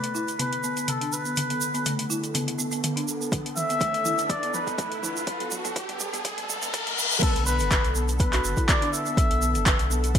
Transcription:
Already playing: D3 B3 A4 B4, riser
0.04 closed hi-hat
0.15 E4, shaker
0.28 closed hi-hat, shaker
0.39 B3 B4, closed hi-hat, mid tom, shaker
0.53 closed hi-hat
0.64 B3, shaker
0.77 B3, closed hi-hat, shaker
0.88 A4, closed hi-hat, mid tom, shaker
1.01 D4, closed hi-hat
1.12 B4, shaker
1.25 B3, shaker
1.36 closed hi-hat, mid tom, shaker
1.50 B3, closed hi-hat
1.61 shaker
1.74 B3, closed hi-hat, shaker
1.85 A3, closed hi-hat, mid tom, shaker
1.99 closed hi-hat
2.10 E4, shaker
2.24 closed hi-hat, shaker
2.34 B3, closed hi-hat, mid tom, shaker
2.48 closed hi-hat
2.59 B3, shaker
2.71 B3, closed hi-hat, shaker
2.84 closed hi-hat, mid tom, shaker
2.96 D4, closed hi-hat
3.08 shaker
3.21 B3, shaker
3.32 kick, closed hi-hat, mid tom, shaker
3.45 B3, closed hi-hat
3.56 E5, mid tom, shaker
3.69 B3, closed hi-hat, shaker
3.81 kick, closed hi-hat, mid tom, shaker
3.94 closed hi-hat
4.05 E4, mid tom, shaker
4.18 closed hi-hat, shaker
4.29 D5, kick, closed hi-hat, mid tom, shaker
4.43 B3, closed hi-hat
4.54 B4, mid tom, shaker
4.67 B3, kick, closed hi-hat, shaker
4.78 A3, kick, closed hi-hat, mid tom, shaker
4.92 closed hi-hat
5.03 E4 B4, mid tom, shaker
5.17 shaker
5.27 kick, closed hi-hat, mid tom, shaker
5.40 B3, closed hi-hat, mid tom
5.51 mid tom, shaker
5.64 B3, closed hi-hat, mid tom, shaker
5.76 kick, closed hi-hat, mid tom, shaker
5.89 B3, closed hi-hat, mid tom
6.00 mid tom, shaker
6.13 B3, closed hi-hat, mid tom, shaker
6.25 kick, closed hi-hat, mid tom, reverse cymbal, shaker
6.31 mid tom
6.37 B3, closed hi-hat, mid tom
6.44 mid tom
6.49 mid tom, shaker
6.56 mid tom
6.62 B3, closed hi-hat, mid tom, shaker
6.68 mid tom
6.74 kick, closed hi-hat, mid tom, shaker
6.80 mid tom
6.86 B3, closed hi-hat, mid tom
6.92 mid tom
6.98 mid tom, shaker
7.05 mid tom
7.11 B3, mid tom, shaker
7.17 mid tom
7.22 D3 B3 A4, kick, closed hi-hat, crash, shaker
7.35 B1, closed hi-hat
7.46 B3 B4, shaker
7.59 F#1, closed hi-hat, shaker
7.71 B4, kick, clap, closed hi-hat, shaker
7.84 B1, closed hi-hat
7.95 B3, shaker
8.08 closed hi-hat, shaker
8.19 B3 B4, kick, closed hi-hat, shaker
8.33 F#4, clap, closed hi-hat
8.44 F#1, shaker
8.57 E4, kick, closed hi-hat, shaker
8.68 D5, kick, clap, closed hi-hat, shaker
8.82 D4, closed hi-hat
8.92 E5, shaker
9.06 B3, shaker
9.17 B3, kick, closed hi-hat, shaker
9.30 B1, closed hi-hat
9.41 B3, shaker
9.55 F#1, closed hi-hat, shaker
9.66 B4, kick, clap, closed hi-hat, shaker
9.79 B1, closed hi-hat
9.90 B3, shaker
10.04 closed hi-hat, shaker
10.15 B3, kick, closed hi-hat, shaker

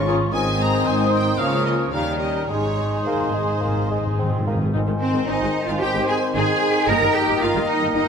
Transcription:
Already playing: G#1 G#2 C#3 C#4 F4 C#6
0.08 C#4 F4 G#4 A#4
0.32 G#1 G#2 D#3 C4 D#4 G#4 C5 G#5 D#6
0.60 C4 D#4 A#5
0.86 G#1 G#2 C5 G#5
1.13 C4 D#4 G5
1.38 C#2 C#3 F3 A#3 C#4 F4 A#4 C#5 F5
1.66 A#3 F4 D#5
1.92 D#2 D#3 G3 C#4 D#4 G4 A#4 F5 A#5
2.19 C#4 G4 D#5
2.48 G#1 G#2 G#3 D#4 G#4 C#5 C6
2.57 G#2
2.66 G#2
2.73 G#2
2.79 G#2 D#4 G#4
2.88 G#2
2.97 G#2
3.05 G#1 G#2 A#3 C5
3.13 G#2
3.21 G#2
3.29 G#2
3.34 G#2 G#3 D#4 G#4
3.44 G#2
3.52 G#2
3.60 G#1 G#2 A#3
3.67 G#2
3.75 G#2
3.82 G#2
3.90 G#2 G#3 D#4 G#4
3.99 G#2
4.06 G#2
4.14 G#1 G#2
4.19 G#2 C4
4.30 G#2
4.38 G#2
4.46 G#2 A#3 D#4 G#4
4.54 G#2
4.62 G#2
4.73 G#1 G#2 D#3 C4 D#4 C5 G#5
4.88 G#1 D#3 G#3
5.01 C4 C5
5.14 G#1 D#3 G#3
5.28 G#1 C4 D#4 D#5
5.42 G#1 D#3 G#3
5.67 G#1 D#3 G#3 F4 F5
5.81 G#1 C4 D#4 G4 G5
5.95 G#1 D#3 G#3
6.07 G#4 G#5
6.34 G#1 C4 D#4 G#4 G#5
6.86 G1 A#3 D#4 A#4 D#5 A#5
7.02 G1 D#3 G3
7.13 G4 G5
7.29 G1 D#3 G3
7.42 G1 A#3 D#4 F4 F5
7.56 G1 D#3 G3
7.68 D#4 D#5
7.81 G1 D#3 G3
7.94 G1 A#3 D#4 D#5

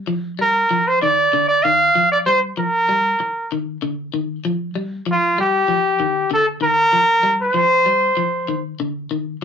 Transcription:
0.07 F3
0.39 G3 A#4
0.71 F3
0.87 C5
1.01 D#3 D5
1.33 D3
1.48 D5
1.63 D#3 F5
1.95 F3
2.12 D5
2.26 G3 C5
2.57 F3 A#4
2.89 G3
3.20 muted clean electric guitar stroke
3.52 D#3
3.82 D3
4.14 D#3
4.45 F3
4.75 G3
5.06 F3
5.11 F4
5.38 G3 G4
5.68 F3
6.00 D#3
6.31 D3 A4
6.61 D#3 A#4
6.93 F3
7.23 G3
7.43 C5
7.54 F3
7.86 G3
8.17 F3
8.48 D#3
8.80 D3
9.11 D#3

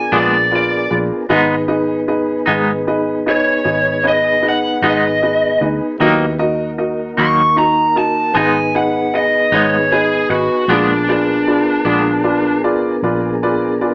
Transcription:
Already playing: B3 D4 G#4 A#4 G#5
0.12 A#1 A#2 G#3 B3 D4 F4 G#4 B4 D5
0.17 D5
0.51 F4 G#4 B4 D5
0.56 D5
0.90 A#1 F4 G#4 B4 D5
1.29 G#1 G#2 G#3 B3 D#4 G#4 B4 D#5
1.68 D#4 G#4 B4 D#5
2.08 D#4 G#4 B4 D#5
2.46 G#1 G#2 G#3 B3 D#4 G#4 B4 D#5
2.87 D#4 G#4 B4 D#5
3.26 D#4 G#4 B4 C#5 D#5
3.65 G#1 D#4 G#4 B4 D#5
4.04 D#4 G#4 B4 D#5
4.08 D#5
4.42 D#4 G#4 B4 D#5
4.49 F#5
4.82 G#1 G#2 G#3 B3 D#4 G#4 B4 D#5
4.89 D#5
5.22 D#4 G#4 B4 D#5
5.61 D2 D#4 G#4 B4 D#5
5.98 D#2 D#3 F#3 A#3 B3 D#4 E4 F#4 G4 A#4 B4 D#5
6.39 A#3 D#4 F#4 A#4 D#5
6.78 D#4 F#4 A#4 D#5
7.17 D#2 D#3 F#3 A#3 D#4 F#4 A#4 D#5
7.21 C#6
7.56 D#4 F#4 A#4 D#5 A#5
7.96 D#4 F#4 A#4 D#5 A5
8.34 G#1 G#2 G#3 B3 D#4 G#4 B4 D#5 G#5
8.75 D#4 G#4 B4 D#5 F#5
9.14 D#4 G#4 B4 D#5
9.52 G#1 G#2 G#3 B3 D#4 G#4 B4 C#5 D#5
9.92 D#4 G#4 B4 D#5
10.30 G#1 D#4 F#4 G#4 B4 D#5
10.68 A#1 A#2 G#3 B3 D4 F4 G#4 A#4 B4 D5
10.72 D4
11.09 D4 F4 G#4 B4 D5
11.47 F4 G#4 B4 D5
11.85 A#1 A#2 G#3 B3 D4 F4 G#4 B4 D5
12.24 F4 G#4 B4 D5
12.64 F4 G#4 B4 D5
13.02 A#1 F4 G#4 B4 D5
13.43 F4 G#4 B4 D5
13.81 F4 G#4 B4 D5

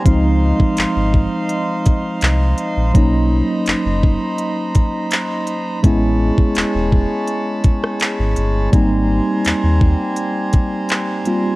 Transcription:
0.04 C#2 F3 G#3 C4 D#4 C5 F5 C6, kick, closed hi-hat
0.60 kick
0.77 G#1, clap, closed hi-hat
0.96 G#1
1.14 kick
1.49 closed hi-hat
1.85 kick, closed hi-hat
2.21 C2, clap, closed hi-hat
2.58 closed hi-hat
2.77 A#1
2.94 B1 F#3 A#3 C#4 D#4 A#5 B5, kick, closed hi-hat
3.66 F#1, clap, closed hi-hat
3.85 F#1
4.03 kick
4.38 closed hi-hat
4.75 kick, closed hi-hat
5.11 clap, closed hi-hat
5.47 closed hi-hat
5.83 A1 G#3 B3 C#4 E4 C#5 A5, kick, closed hi-hat
6.38 kick
6.55 E1, clap, closed hi-hat
6.75 E1
6.92 kick
7.27 closed hi-hat
7.64 kick, closed hi-hat
7.84 cross-stick
8.00 clap, closed hi-hat
8.19 G#1
8.36 G1, closed hi-hat
8.72 G#1 G3 A#3 C4 D#4 C5 G#5 A#5, kick, closed hi-hat
9.45 D#2, clap, closed hi-hat
9.64 D#2
9.81 kick
10.16 closed hi-hat
10.53 kick, closed hi-hat
10.89 clap, closed hi-hat
11.25 G3 A#3 C4 F4, closed hi-hat

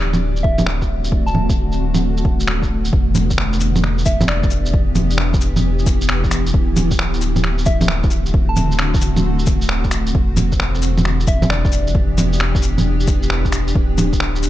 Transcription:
Already playing: D1 D3 A3 C4 F#4 D5
0.13 low bongo, shaker
0.36 shaker
0.43 E5, kick
0.58 low bongo, shaker
0.66 finger snap
0.81 kick, shaker
1.04 shaker
1.12 B3, kick
1.26 A5, shaker
1.35 low bongo
1.50 kick, shaker
1.72 shaker
1.94 low bongo, shaker
2.17 shaker
2.25 kick
2.40 shaker
2.48 finger snap
2.63 kick, shaker
2.85 shaker
2.93 E1 E3 B3 D4 G4, kick
3.15 low bongo, cabasa
3.30 kick, shaker
3.38 finger snap
3.53 shaker
3.60 cabasa
3.76 low bongo, shaker
3.84 finger snap
3.98 shaker
4.06 E5, kick, cabasa
4.21 low bongo, shaker
4.28 D5, finger snap
4.43 kick, shaker
4.51 cabasa
4.66 shaker
4.73 E4, kick
4.95 low bongo, cabasa
5.10 shaker
5.18 finger snap
5.34 kick, shaker
5.41 cabasa
5.56 low bongo, shaker
5.79 shaker
5.86 kick, cabasa
6.01 shaker
6.09 finger snap
6.24 kick, shaker
6.31 finger snap, cabasa
6.46 shaker
6.54 D1 D3 A3 C4 F#4, kick
6.76 low bongo, cabasa
6.91 kick, shaker
6.99 finger snap
7.14 shaker
7.21 cabasa
7.36 low bongo, shaker
7.44 finger snap
7.58 shaker
7.66 E5, kick, cabasa
7.81 low bongo, shaker
7.88 finger snap
8.03 kick, shaker
8.11 cabasa
8.26 shaker
8.34 kick
8.49 A5
8.56 low bongo, cabasa
8.71 shaker
8.79 finger snap
8.94 kick, shaker
9.01 cabasa
9.16 low bongo, shaker
9.39 shaker
9.46 kick, cabasa
9.62 shaker
9.69 finger snap
9.84 kick, shaker
9.91 finger snap, cabasa
10.06 shaker
10.13 E1 E3 B3 D4 G4, kick
10.37 low bongo, cabasa
10.52 kick, shaker
10.60 finger snap
10.75 shaker
10.82 cabasa
10.98 low bongo, shaker
11.05 finger snap
11.20 shaker
11.27 E5, kick, cabasa
11.42 low bongo, shaker
11.50 D5, finger snap
11.65 kick, shaker
11.72 cabasa
11.87 shaker
11.95 kick
12.18 low bongo, cabasa
12.33 shaker
12.40 finger snap
12.55 kick, shaker
12.62 cabasa
12.78 low bongo, shaker
13.00 shaker
13.07 kick, cabasa
13.23 shaker
13.30 finger snap
13.45 kick, shaker
13.52 finger snap, cabasa
13.68 shaker
13.75 D1 D3 A3 C4 F#4, kick
13.98 low bongo, cabasa
14.13 kick, shaker
14.20 finger snap
14.35 shaker
14.43 cabasa

